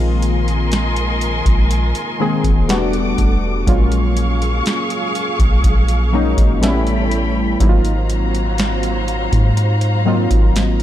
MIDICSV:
0, 0, Header, 1, 5, 480
1, 0, Start_track
1, 0, Tempo, 983607
1, 1791, Time_signature, 4, 2, 24, 8
1, 5285, End_track
2, 0, Start_track
2, 0, Title_t, "String section"
2, 0, Program_c, 0, 48
2, 0, Note_on_c, 0, 70, 81
2, 0, Note_on_c, 0, 75, 73
2, 0, Note_on_c, 0, 80, 77
2, 0, Note_on_c, 0, 84, 94
2, 1296, Note_off_c, 0, 70, 0
2, 1296, Note_off_c, 0, 75, 0
2, 1296, Note_off_c, 0, 80, 0
2, 1296, Note_off_c, 0, 84, 0
2, 1312, Note_on_c, 0, 69, 77
2, 1312, Note_on_c, 0, 78, 70
2, 1313, Note_on_c, 0, 86, 85
2, 1787, Note_off_c, 0, 69, 0
2, 1787, Note_off_c, 0, 78, 0
2, 1787, Note_off_c, 0, 86, 0
2, 1793, Note_on_c, 0, 68, 87
2, 1794, Note_on_c, 0, 77, 75
2, 1795, Note_on_c, 0, 85, 92
2, 3218, Note_off_c, 0, 68, 0
2, 3218, Note_off_c, 0, 77, 0
2, 3218, Note_off_c, 0, 85, 0
2, 3233, Note_on_c, 0, 69, 78
2, 3233, Note_on_c, 0, 79, 70
2, 3233, Note_on_c, 0, 83, 84
2, 3234, Note_on_c, 0, 73, 74
2, 3707, Note_off_c, 0, 69, 0
2, 3707, Note_off_c, 0, 79, 0
2, 3707, Note_off_c, 0, 83, 0
2, 3708, Note_off_c, 0, 73, 0
2, 3713, Note_on_c, 0, 82, 95
2, 3714, Note_on_c, 0, 54, 86
2, 3714, Note_on_c, 0, 72, 80
2, 3715, Note_on_c, 0, 77, 80
2, 5285, Note_off_c, 0, 54, 0
2, 5285, Note_off_c, 0, 72, 0
2, 5285, Note_off_c, 0, 77, 0
2, 5285, Note_off_c, 0, 82, 0
2, 5285, End_track
3, 0, Start_track
3, 0, Title_t, "Synth keys"
3, 0, Program_c, 1, 88
3, 0, Control_c, 1, 64, 127
3, 0, Note_on_c, 1, 51, 81
3, 0, Note_on_c, 1, 56, 78
3, 0, Note_on_c, 1, 58, 76
3, 0, Note_on_c, 1, 60, 73
3, 0, Note_on_c, 1, 65, 90
3, 759, Note_off_c, 1, 51, 0
3, 761, Note_off_c, 1, 56, 0
3, 762, Note_off_c, 1, 58, 0
3, 763, Note_off_c, 1, 60, 0
3, 765, Note_off_c, 1, 65, 0
3, 1071, Note_on_c, 1, 51, 85
3, 1073, Note_on_c, 1, 56, 80
3, 1075, Note_on_c, 1, 58, 76
3, 1078, Note_on_c, 1, 60, 84
3, 1081, Note_on_c, 1, 68, 98
3, 1311, Note_off_c, 1, 51, 0
3, 1311, Note_on_c, 1, 55, 86
3, 1312, Note_off_c, 1, 56, 0
3, 1313, Note_off_c, 1, 58, 0
3, 1313, Note_on_c, 1, 57, 83
3, 1315, Note_off_c, 1, 60, 0
3, 1316, Note_off_c, 1, 68, 0
3, 1316, Control_c, 1, 64, 0
3, 1316, Note_on_c, 1, 59, 86
3, 1320, Note_on_c, 1, 62, 84
3, 1321, Note_on_c, 1, 66, 95
3, 1408, Control_c, 1, 64, 127
3, 1756, Note_off_c, 1, 55, 0
3, 1757, Note_off_c, 1, 57, 0
3, 1758, Note_off_c, 1, 59, 0
3, 1760, Note_off_c, 1, 62, 0
3, 1761, Note_off_c, 1, 66, 0
3, 1789, Note_on_c, 1, 54, 76
3, 1792, Note_on_c, 1, 56, 72
3, 1795, Note_on_c, 1, 58, 77
3, 1797, Note_on_c, 1, 61, 74
3, 1798, Control_c, 1, 64, 0
3, 1799, Note_on_c, 1, 65, 92
3, 1891, Control_c, 1, 64, 127
3, 2680, Note_off_c, 1, 54, 0
3, 2681, Note_off_c, 1, 56, 0
3, 2683, Note_off_c, 1, 58, 0
3, 2684, Note_off_c, 1, 61, 0
3, 2685, Note_off_c, 1, 65, 0
3, 2990, Note_on_c, 1, 54, 89
3, 2993, Note_on_c, 1, 56, 82
3, 2995, Note_on_c, 1, 58, 82
3, 2999, Note_on_c, 1, 61, 81
3, 3001, Note_on_c, 1, 63, 103
3, 3228, Note_on_c, 1, 55, 92
3, 3230, Note_off_c, 1, 54, 0
3, 3231, Note_off_c, 1, 61, 0
3, 3231, Note_on_c, 1, 57, 85
3, 3232, Note_off_c, 1, 56, 0
3, 3233, Note_off_c, 1, 58, 0
3, 3235, Note_on_c, 1, 59, 80
3, 3236, Note_off_c, 1, 63, 0
3, 3237, Control_c, 1, 64, 0
3, 3237, Note_on_c, 1, 61, 86
3, 3240, Note_on_c, 1, 64, 101
3, 3319, Control_c, 1, 64, 127
3, 3675, Note_off_c, 1, 55, 0
3, 3676, Note_off_c, 1, 57, 0
3, 3678, Note_off_c, 1, 59, 0
3, 3679, Note_off_c, 1, 61, 0
3, 3680, Note_off_c, 1, 64, 0
3, 3710, Note_on_c, 1, 54, 80
3, 3712, Note_on_c, 1, 58, 71
3, 3715, Note_on_c, 1, 60, 76
3, 3717, Control_c, 1, 64, 0
3, 3718, Note_on_c, 1, 63, 76
3, 3720, Note_on_c, 1, 64, 77
3, 3747, Note_off_c, 1, 64, 0
3, 3753, Note_on_c, 1, 65, 93
3, 3792, Control_c, 1, 64, 127
3, 4600, Note_off_c, 1, 54, 0
3, 4601, Note_off_c, 1, 58, 0
3, 4603, Note_off_c, 1, 60, 0
3, 4604, Note_off_c, 1, 63, 0
3, 4622, Note_off_c, 1, 65, 0
3, 4908, Note_on_c, 1, 54, 93
3, 4910, Note_on_c, 1, 58, 78
3, 4913, Note_on_c, 1, 60, 81
3, 4916, Note_on_c, 1, 63, 80
3, 4918, Note_on_c, 1, 65, 96
3, 5285, Note_off_c, 1, 54, 0
3, 5285, Note_off_c, 1, 58, 0
3, 5285, Note_off_c, 1, 60, 0
3, 5285, Note_off_c, 1, 63, 0
3, 5285, Note_off_c, 1, 65, 0
3, 5285, End_track
4, 0, Start_track
4, 0, Title_t, "808-style bass"
4, 0, Program_c, 2, 38
4, 0, Note_on_c, 2, 34, 107
4, 692, Note_off_c, 2, 34, 0
4, 712, Note_on_c, 2, 34, 94
4, 942, Note_off_c, 2, 34, 0
4, 1193, Note_on_c, 2, 28, 98
4, 1537, Note_off_c, 2, 28, 0
4, 1555, Note_on_c, 2, 28, 102
4, 1783, Note_off_c, 2, 28, 0
4, 1793, Note_on_c, 2, 34, 107
4, 2253, Note_off_c, 2, 34, 0
4, 2633, Note_on_c, 2, 34, 98
4, 2747, Note_off_c, 2, 34, 0
4, 2753, Note_on_c, 2, 34, 111
4, 3097, Note_off_c, 2, 34, 0
4, 3112, Note_on_c, 2, 33, 97
4, 3692, Note_off_c, 2, 33, 0
4, 3712, Note_on_c, 2, 32, 109
4, 4532, Note_off_c, 2, 32, 0
4, 4552, Note_on_c, 2, 44, 101
4, 5012, Note_off_c, 2, 44, 0
4, 5031, Note_on_c, 2, 32, 107
4, 5280, Note_off_c, 2, 32, 0
4, 5285, End_track
5, 0, Start_track
5, 0, Title_t, "Drums"
5, 110, Note_on_c, 9, 42, 74
5, 159, Note_off_c, 9, 42, 0
5, 234, Note_on_c, 9, 42, 55
5, 283, Note_off_c, 9, 42, 0
5, 350, Note_on_c, 9, 42, 67
5, 356, Note_on_c, 9, 38, 113
5, 399, Note_off_c, 9, 42, 0
5, 405, Note_off_c, 9, 38, 0
5, 471, Note_on_c, 9, 42, 57
5, 520, Note_off_c, 9, 42, 0
5, 593, Note_on_c, 9, 42, 64
5, 641, Note_off_c, 9, 42, 0
5, 711, Note_on_c, 9, 36, 92
5, 713, Note_on_c, 9, 42, 61
5, 760, Note_off_c, 9, 36, 0
5, 762, Note_off_c, 9, 42, 0
5, 833, Note_on_c, 9, 42, 68
5, 882, Note_off_c, 9, 42, 0
5, 952, Note_on_c, 9, 42, 59
5, 1000, Note_off_c, 9, 42, 0
5, 1192, Note_on_c, 9, 36, 93
5, 1193, Note_on_c, 9, 42, 60
5, 1240, Note_off_c, 9, 36, 0
5, 1242, Note_off_c, 9, 42, 0
5, 1314, Note_on_c, 9, 42, 77
5, 1318, Note_on_c, 9, 38, 114
5, 1362, Note_off_c, 9, 42, 0
5, 1366, Note_off_c, 9, 38, 0
5, 1432, Note_on_c, 9, 42, 47
5, 1481, Note_off_c, 9, 42, 0
5, 1553, Note_on_c, 9, 36, 92
5, 1553, Note_on_c, 9, 42, 54
5, 1602, Note_off_c, 9, 36, 0
5, 1602, Note_off_c, 9, 42, 0
5, 1792, Note_on_c, 9, 36, 112
5, 1793, Note_on_c, 9, 42, 74
5, 1841, Note_off_c, 9, 36, 0
5, 1842, Note_off_c, 9, 42, 0
5, 1911, Note_on_c, 9, 42, 50
5, 1960, Note_off_c, 9, 42, 0
5, 2033, Note_on_c, 9, 42, 76
5, 2082, Note_off_c, 9, 42, 0
5, 2156, Note_on_c, 9, 42, 55
5, 2205, Note_off_c, 9, 42, 0
5, 2273, Note_on_c, 9, 42, 68
5, 2279, Note_on_c, 9, 38, 110
5, 2322, Note_off_c, 9, 42, 0
5, 2328, Note_off_c, 9, 38, 0
5, 2393, Note_on_c, 9, 42, 59
5, 2441, Note_off_c, 9, 42, 0
5, 2514, Note_on_c, 9, 42, 61
5, 2563, Note_off_c, 9, 42, 0
5, 2632, Note_on_c, 9, 36, 91
5, 2634, Note_on_c, 9, 42, 65
5, 2681, Note_off_c, 9, 36, 0
5, 2683, Note_off_c, 9, 42, 0
5, 2752, Note_on_c, 9, 36, 86
5, 2753, Note_on_c, 9, 42, 69
5, 2801, Note_off_c, 9, 36, 0
5, 2802, Note_off_c, 9, 42, 0
5, 2872, Note_on_c, 9, 42, 55
5, 2920, Note_off_c, 9, 42, 0
5, 3112, Note_on_c, 9, 36, 93
5, 3113, Note_on_c, 9, 42, 65
5, 3160, Note_off_c, 9, 36, 0
5, 3162, Note_off_c, 9, 42, 0
5, 3234, Note_on_c, 9, 42, 77
5, 3238, Note_on_c, 9, 38, 114
5, 3283, Note_off_c, 9, 42, 0
5, 3287, Note_off_c, 9, 38, 0
5, 3351, Note_on_c, 9, 42, 44
5, 3400, Note_off_c, 9, 42, 0
5, 3472, Note_on_c, 9, 42, 58
5, 3521, Note_off_c, 9, 42, 0
5, 3711, Note_on_c, 9, 36, 120
5, 3711, Note_on_c, 9, 42, 76
5, 3760, Note_off_c, 9, 36, 0
5, 3760, Note_off_c, 9, 42, 0
5, 3829, Note_on_c, 9, 42, 53
5, 3878, Note_off_c, 9, 42, 0
5, 3951, Note_on_c, 9, 42, 75
5, 4000, Note_off_c, 9, 42, 0
5, 4073, Note_on_c, 9, 42, 56
5, 4122, Note_off_c, 9, 42, 0
5, 4188, Note_on_c, 9, 42, 73
5, 4195, Note_on_c, 9, 38, 108
5, 4237, Note_off_c, 9, 42, 0
5, 4244, Note_off_c, 9, 38, 0
5, 4309, Note_on_c, 9, 42, 57
5, 4358, Note_off_c, 9, 42, 0
5, 4431, Note_on_c, 9, 42, 66
5, 4480, Note_off_c, 9, 42, 0
5, 4550, Note_on_c, 9, 36, 91
5, 4551, Note_on_c, 9, 42, 62
5, 4599, Note_off_c, 9, 36, 0
5, 4600, Note_off_c, 9, 42, 0
5, 4671, Note_on_c, 9, 42, 68
5, 4720, Note_off_c, 9, 42, 0
5, 4789, Note_on_c, 9, 42, 58
5, 4837, Note_off_c, 9, 42, 0
5, 5030, Note_on_c, 9, 36, 95
5, 5030, Note_on_c, 9, 42, 64
5, 5079, Note_off_c, 9, 36, 0
5, 5079, Note_off_c, 9, 42, 0
5, 5152, Note_on_c, 9, 42, 81
5, 5156, Note_on_c, 9, 38, 112
5, 5201, Note_off_c, 9, 42, 0
5, 5204, Note_off_c, 9, 38, 0
5, 5270, Note_on_c, 9, 42, 46
5, 5285, Note_off_c, 9, 42, 0
5, 5285, End_track
0, 0, End_of_file